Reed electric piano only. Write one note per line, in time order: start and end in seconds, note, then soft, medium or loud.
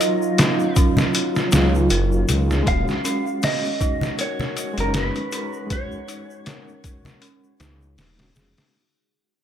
0.00 1.48 F#3 medium
0.00 1.53 D#4 medium
0.00 1.57 F4 loud
1.48 2.60 F#3 medium
1.53 2.63 D#4 medium
1.57 2.65 F4 medium
2.63 4.71 G#3 loud
2.67 4.73 C#4 medium
2.71 4.75 F#4 loud
4.74 5.64 G#3 loud
4.78 5.67 C#4 medium
4.82 5.69 D#4 loud
5.67 7.54 G#3 medium
5.71 7.57 C#4 medium
5.75 7.59 F#4 medium
8.18 8.70 G#3 medium
8.18 8.71 C#4 medium
8.23 8.72 F#4 medium